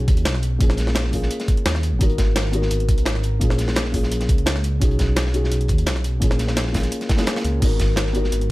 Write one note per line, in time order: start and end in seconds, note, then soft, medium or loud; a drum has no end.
0.00 0.60 C#4 medium
0.00 0.62 D#4 medium
0.00 0.62 F#4 medium
0.00 0.62 G#4 loud
0.08 0.27 D#2 loud
0.08 kick loud
0.08 closed hi-hat medium
0.17 closed hi-hat soft
0.25 0.59 B1 medium
0.25 snare loud
0.25 closed hi-hat medium
0.35 snare soft
0.42 closed hi-hat medium
0.58 1.29 A#1 loud
0.58 1.09 A#3 medium
0.58 1.11 C#4 medium
0.58 1.11 F4 medium
0.58 1.12 G#4 loud
0.58 kick loud
0.58 closed hi-hat medium
0.70 snare soft
0.77 snare soft
0.77 closed hi-hat medium
0.87 snare soft
0.95 snare loud
0.95 closed hi-hat medium
1.04 snare soft
1.11 1.98 A#3 medium
1.11 1.98 C#4 medium
1.11 1.99 F4 medium
1.11 2.00 G#4 medium
1.11 kick medium
1.11 closed hi-hat medium
1.11 open hi-hat medium
1.22 snare soft
1.31 closed hi-hat medium
1.40 snare soft
1.40 closed hi-hat soft
1.48 kick loud
1.48 closed hi-hat medium
1.57 closed hi-hat soft
1.66 1.94 D#2 medium
1.66 snare loud
1.66 closed hi-hat medium
1.75 snare soft
1.83 closed hi-hat medium
1.92 2.00 G#1 loud
1.99 2.70 G#1 loud
1.99 2.50 B3 medium
1.99 2.51 D#4 medium
1.99 2.52 F#4 medium
1.99 2.52 A#4 medium
1.99 kick loud
1.99 closed hi-hat medium
2.09 closed hi-hat soft
2.18 kick medium
2.18 snare medium
2.18 closed hi-hat medium
2.36 snare loud
2.36 closed hi-hat medium
2.45 snare soft
2.51 3.38 B3 medium
2.51 3.39 D#4 medium
2.51 3.39 F#4 medium
2.51 3.40 A#4 medium
2.51 closed hi-hat medium
2.62 snare soft
2.71 2.90 G#1 medium
2.71 closed hi-hat loud
2.71 closed hi-hat medium
2.80 closed hi-hat soft
2.89 3.08 B1 loud
2.89 kick loud
2.89 closed hi-hat medium
2.98 closed hi-hat soft
3.06 3.40 G#1 loud
3.06 snare loud
3.06 closed hi-hat medium
3.15 snare soft
3.23 closed hi-hat medium
3.39 4.31 A#1 loud
3.39 3.90 A#3 medium
3.39 3.91 C#4 medium
3.39 3.92 F4 medium
3.39 3.93 G#4 medium
3.39 kick loud
3.39 closed hi-hat medium
3.50 snare soft
3.58 snare soft
3.58 closed hi-hat medium
3.68 snare medium
3.68 snare soft
3.76 snare loud
3.76 closed hi-hat medium
3.85 snare soft
3.92 4.78 A#3 medium
3.92 4.78 C#4 medium
3.92 4.80 F4 medium
3.92 4.80 G#4 medium
3.92 kick medium
3.92 closed hi-hat medium
3.92 open hi-hat medium
4.03 snare soft
4.12 closed hi-hat medium
4.20 snare soft
4.20 closed hi-hat soft
4.29 4.80 C#2 loud
4.29 kick loud
4.29 closed hi-hat medium
4.38 closed hi-hat soft
4.46 snare loud
4.46 closed hi-hat medium
4.55 snare soft
4.64 closed hi-hat medium
4.79 5.50 B1 loud
4.79 5.30 C#4 medium
4.79 5.32 D#4 medium
4.79 5.32 F#4 medium
4.79 5.33 G#4 loud
4.79 kick loud
4.79 closed hi-hat loud
4.79 closed hi-hat medium
4.91 closed hi-hat soft
4.99 kick medium
4.99 snare medium
4.99 closed hi-hat medium
5.16 snare loud
5.16 closed hi-hat loud
5.16 closed hi-hat medium
5.26 snare soft
5.32 6.19 C#4 medium
5.32 6.19 D#4 medium
5.32 6.20 F#4 medium
5.32 6.21 G#4 loud
5.32 closed hi-hat medium
5.44 snare soft
5.51 5.71 B1 loud
5.51 closed hi-hat medium
5.51 closed hi-hat loud
5.61 closed hi-hat soft
5.68 5.88 D#2 loud
5.68 kick loud
5.68 closed hi-hat medium
5.78 closed hi-hat soft
5.86 6.20 B1 medium
5.86 snare loud
5.86 closed hi-hat medium
5.96 snare soft
6.04 closed hi-hat medium
6.20 6.91 A#1 loud
6.20 6.71 A#3 medium
6.20 6.72 C#4 medium
6.20 6.73 F4 medium
6.20 6.73 G#4 loud
6.20 kick loud
6.20 closed hi-hat medium
6.20 closed hi-hat loud
6.31 snare soft
6.38 snare soft
6.38 closed hi-hat medium
6.47 snare medium
6.47 snare soft
6.57 snare loud
6.57 closed hi-hat loud
6.57 closed hi-hat medium
6.66 snare soft
6.72 7.15 A#3 medium
6.72 7.16 C#4 medium
6.72 7.17 F4 medium
6.72 7.18 G#4 medium
6.72 kick medium
6.72 snare loud
6.72 closed hi-hat medium
6.72 open hi-hat medium
6.84 snare soft
6.84 closed hi-hat soft
6.92 closed hi-hat loud
6.92 closed hi-hat medium
7.01 snare soft
7.01 closed hi-hat soft
7.09 kick loud
7.09 snare loud
7.09 closed hi-hat medium
7.17 7.59 A#3 loud
7.17 7.60 C#4 medium
7.17 7.60 F4 medium
7.17 7.61 G#4 loud
7.17 snare loud
7.17 closed hi-hat medium
7.17 closed hi-hat soft
7.26 snare loud
7.26 closed hi-hat medium
7.36 snare loud
7.36 snare soft
7.36 closed hi-hat medium
7.45 7.60 C#2 medium
7.45 closed hi-hat medium
7.60 8.31 G#1 loud
7.60 8.11 B3 medium
7.60 8.12 D#4 medium
7.60 8.13 F#4 medium
7.60 8.14 A#4 medium
7.60 kick loud
7.60 closed hi-hat medium
7.60 crash medium
7.71 closed hi-hat soft
7.80 kick medium
7.80 snare medium
7.80 closed hi-hat medium
7.96 snare loud
7.96 closed hi-hat medium
7.96 closed hi-hat loud
8.06 snare soft
8.13 8.52 B3 medium
8.13 8.52 D#4 medium
8.13 8.52 F#4 medium
8.13 8.52 A#4 medium
8.13 closed hi-hat medium
8.24 snare soft
8.32 8.51 G#1 medium
8.32 closed hi-hat loud
8.32 closed hi-hat medium
8.41 closed hi-hat soft